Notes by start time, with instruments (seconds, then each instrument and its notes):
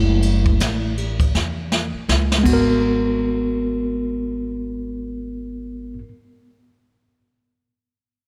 Already playing: upright bass F#1, tine electric piano G#3 A3 E4 F#5
0.22 ride
0.45 kick, ride
0.60 upright bass A1, snare, hi-hat pedal, ride
0.98 ride
1.20 kick, ride
1.35 upright bass E2, snare
1.72 snare
1.94 muted upright bass stroke
2.09 upright bass C#2, snare
2.32 snare
2.38 tine electric piano G#3
2.44 upright bass G#1, tine electric piano B3, kick, crash
2.48 tine electric piano F#4
2.53 tine electric piano A#4